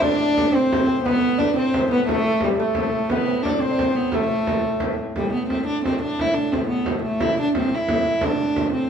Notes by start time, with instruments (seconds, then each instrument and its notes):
Already playing: harmonium A2
0.01 viola da gamba D4, lute D4, recorder D5, frame drum
0.34 lute D4, frame drum
0.52 lute C4, viola da gamba C4, recorder C5
0.72 frame drum
0.86 lute C4, frame drum
1.04 harmonium A2, viola da gamba B3, lute B3, recorder B4, frame drum
1.23 frame drum
1.38 lute D4, viola da gamba D4, frame drum
1.56 lute C4, viola da gamba C4, recorder C5
1.74 frame drum
1.91 lute B3, viola da gamba B3, recorder B4
2.07 lute A3, viola da gamba A3, recorder A4, frame drum
2.24 lute A3, recorder A4, frame drum
2.40 lute G3, viola da gamba G3, recorder G4, frame drum
2.59 viola da gamba A3, lute A3, recorder A4
2.75 frame drum
3.10 viola da gamba B3, lute B3, recorder B4, frame drum
3.28 lute C4, frame drum
3.43 viola da gamba D4, lute D4, recorder D5, frame drum
3.55 viola da gamba C4 D4
3.60 lute C4, recorder C5
3.71 lute D4
3.78 lute C4, frame drum
3.96 viola da gamba B3
4.12 viola da gamba A3, lute A3, recorder A4, frame drum
4.31 frame drum
4.47 frame drum
4.64 frame drum
4.80 frame drum
5.15 harmonium A2, viola da gamba G3, frame drum
5.32 viola da gamba B3, frame drum
5.49 viola da gamba C4, frame drum
5.67 viola da gamba D4
5.84 viola da gamba C4, frame drum
6.02 viola da gamba D4
6.19 viola da gamba E4, frame drum
6.34 viola da gamba D4, frame drum
6.52 viola da gamba C4, frame drum
6.68 viola da gamba B3
6.86 frame drum
7.03 viola da gamba A3
7.20 viola da gamba E4, frame drum
7.38 viola da gamba D4, frame drum
7.55 viola da gamba C4, frame drum
7.75 viola da gamba E4
7.88 frame drum
8.21 viola da gamba D4, frame drum
8.39 frame drum
8.56 frame drum
8.73 viola da gamba C4